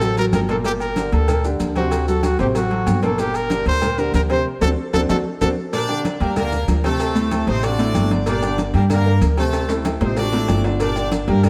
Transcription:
Already playing: A1 A4
0.01 F#3 F#4 A4, cowbell, high conga, low agogo, maracas
0.17 F#3 F#4 A4 A#4, cowbell, high conga, maracas
0.32 G1 A#4, cowbell, high conga, low timbale, low agogo, maracas
0.48 A#2 A#3 A4 A#4, cowbell, high conga, maracas
0.64 A#2 A#3 G4 A#4, cowbell, high conga, low agogo, maracas
0.80 A#4, high conga, low agogo, maracas
0.96 D3 D4 G4, cowbell, high conga, maracas
1.12 D2 A4, cowbell, high conga, maracas
1.28 A#2 A#3 A#4, cowbell, high conga, low conga, low agogo, maracas
1.44 D3 D4 G4, high conga, maracas
1.60 D2, cowbell, high conga, low agogo, maracas
1.75 C3 C4 F#4 C5, cowbell, high conga, low agogo, maracas
1.91 cowbell, high conga, low agogo, maracas
2.08 F#3 F#4 A4, high conga, maracas
2.23 F#4, cowbell, high conga, low agogo, maracas
2.39 A1 C3 C4 G4 C5, cowbell, high conga, maracas
2.55 F#3 F#4 A4, cowbell, high conga, low agogo, maracas
2.71 F#3 F#4 A4, cowbell
2.86 G1, cowbell, high conga, low agogo, maracas
3.03 A#2 A#3 A4 A#4, cowbell, high conga, maracas
3.18 A#2 A#3 G4 A#4, cowbell, high conga, low agogo, maracas
3.34 A#4, high conga, low agogo, maracas
3.50 D3 D4 G4, cowbell, high conga, maracas
3.66 D2 C5, cowbell, high conga, maracas
3.82 A#2 A#3 A#4, cowbell, high conga, low conga, low agogo, maracas
3.98 D3 D4 G4 A#4, high conga, maracas
4.14 D2 A#4, cowbell, high conga, low agogo, maracas
4.30 C3 C4 C5, cowbell, high conga, low agogo, maracas
4.61 D2 C4 D4 F#4 A4, cowbell, high conga, high timbale, maracas
4.93 D2 C4 D4 F#4 A4, cowbell, high conga, high timbale, maracas
5.09 D2 C4 D4 F#4 A4, cowbell, high conga, high timbale, maracas
5.41 D2 C4 D4 F#4 A4, cowbell, high conga, high timbale, maracas
5.73 A#2 A#3 D4 G4 A#4 D5, cowbell, high conga, low agogo, maracas
5.89 D3 D4 D5, high conga, low agogo
6.05 cowbell, high conga, maracas
6.20 D2 G3 A#3 D4 G4 A#4 G5, cowbell, high conga, maracas
6.36 D3 A#3 D4 A#4 D5, cowbell, high conga, low conga, low agogo, maracas
6.52 A#3 A#4 A#5, high conga, low conga, maracas
6.67 D2, cowbell, high conga, low timbale, low agogo, maracas
6.84 C3 A3 C4 A4 C5, cowbell, high conga, low agogo, maracas
7.00 cowbell, high conga, low agogo, maracas
7.15 A2 A3 A4, high conga, maracas
7.31 cowbell, high conga, low agogo, maracas
7.47 A1 C3 C4 D#4 C5, cowbell, high conga, maracas
7.63 D4 F#4 D5, cowbell, high conga, low agogo, maracas
7.79 A2 A3 A4, cowbell, high conga, maracas
7.94 G1, cowbell, high conga, low agogo, maracas
8.10 D3 D4 D5, cowbell, high conga, maracas
8.26 A#2 A#3 D4 G4 A#4 D5, cowbell, high conga, low agogo, maracas
8.42 D3 D4 D5, high conga, low agogo, maracas
8.58 cowbell, high conga, maracas
8.74 G2 G3 A#3 D4 G4 A#4 G5, cowbell, high conga, maracas
8.90 D3 A#3 D4 A#4 D5, cowbell, high conga, low conga, low agogo, maracas
9.05 A#3 A#4 A#5, high conga
9.21 D2, cowbell, high conga, low agogo, maracas
9.37 C3 A3 C4 A4 C5, cowbell, high conga, low agogo, maracas
9.53 cowbell, high conga, high timbale, low agogo, maracas
9.69 A2 A3 A4, high conga, high timbale, maracas
9.85 cowbell, high conga, high timbale, low agogo, maracas
10.01 A1 C3 C4 D#4 C5, cowbell, high conga, low timbale, maracas
10.17 D4 F#4 D5, cowbell, high conga, low timbale, low agogo, maracas
10.32 A2 A3 A4, cowbell, high conga, low timbale, maracas
10.48 G1, cowbell, high conga, low timbale, low agogo, maracas
10.64 D3 D4 D5, cowbell, low timbale, maracas
10.80 A#2 A#3 D4 G4 A#4 D5, cowbell, high conga, low agogo, maracas
10.96 D3 D4 D5, high conga, low agogo, maracas
11.12 cowbell, high conga, maracas
11.28 G2 G3 A#3 D4 G4 A#4 G5, cowbell, high conga, maracas
11.43 D3 A#3 D4 A#4 D5, cowbell, high conga, low conga, low agogo, maracas

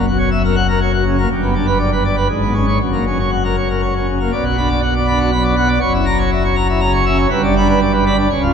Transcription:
Already playing: F#1 F#2
0.07 F#4
0.18 C#5
0.31 E5
0.45 A#4
0.56 F#5
0.69 A#4
0.81 C#5
0.93 F#4
1.06 C#3
1.18 A#3
1.32 G1 G2
1.43 B3
1.55 D4
1.67 B4
1.79 D5
1.92 B4
2.05 D5
2.16 B4
2.29 G#1 G#2
2.42 B3
2.54 C#4
2.67 C#5
2.80 F#1 F#2
2.93 A#3
3.07 C#4
3.19 C#5
3.32 F#5
3.44 A#4
3.57 C#5
3.70 A#4
3.82 C#5
3.96 C#4
4.07 C#3
4.20 A#3
4.32 B1 B2 D5
4.45 F#4
4.57 D4 B5
4.69 D5
4.82 F#5
4.95 D5
5.07 D4 B5
5.20 F#4
5.31 F#3 B5
5.43 D5
5.56 B3 F#5
5.68 D5
5.80 F#1 F#2 C#5
5.93 E4
6.06 A#5
6.19 C#5
6.32 E5
6.44 C#5
6.56 A#5
6.69 E4
6.80 C#3 A#5
6.93 C#5
7.06 C#4 E5
7.19 C#5
7.30 G1 G2 B4
7.43 D4
7.57 D4 B5
7.69 B4
7.81 D5
7.93 B4
8.06 D4 B5
8.18 D4
8.30 C#1 C#2 C#5
8.43 F4

